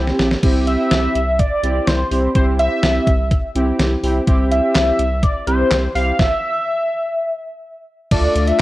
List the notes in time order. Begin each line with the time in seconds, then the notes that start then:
Already playing: C2 C4 E4 G4
0.07 snare
0.19 A#1, snare
0.31 snare
0.43 C2 C4 E4 G4, kick, closed hi-hat, crash
0.67 E5, closed hi-hat
0.91 C2, snare, closed hi-hat
1.15 C2, closed hi-hat
1.39 D5, kick, closed hi-hat
1.63 C2 C4 E4 G4, closed hi-hat
1.87 C2 C5, snare, closed hi-hat
2.11 C2 C4 E4 G4, open hi-hat
2.35 C2 C4 E4 G4 C5, kick, closed hi-hat
2.59 E5, closed hi-hat
2.83 C2, snare, closed hi-hat
3.07 C2, kick, closed hi-hat
3.31 kick, closed hi-hat
3.55 C2 C4 E4 G4, closed hi-hat
3.79 C2, snare, closed hi-hat
4.03 C2 C4 E4 G4, open hi-hat
4.27 C2 C4 E4 G4, kick, closed hi-hat
4.51 E5, closed hi-hat
4.75 C2, snare, clap, closed hi-hat
4.99 C2, closed hi-hat
5.23 D5, kick, closed hi-hat
5.47 C2 C4 E4 G4 C5, closed hi-hat
5.71 C2, snare, clap, closed hi-hat
5.95 C2 C4 E4 G4 F5, open hi-hat
6.19 E5, kick, snare
8.11 D2 A3 D4 F4 A4 D5, kick, closed hi-hat, crash
8.35 D2, closed hi-hat
8.47 E5, closed hi-hat